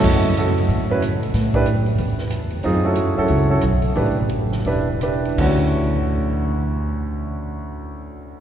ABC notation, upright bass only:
X:1
M:4/4
L:1/8
Q:"Swing" 1/4=176
K:D
V:1 name="Upright bass" clef=bass
F,,4 A,,4 | A,,4 E,,4 | F,,3 z C,,2 B,,,2 | A,,,4 E,,,4 |
D,,8- | D,,8 |]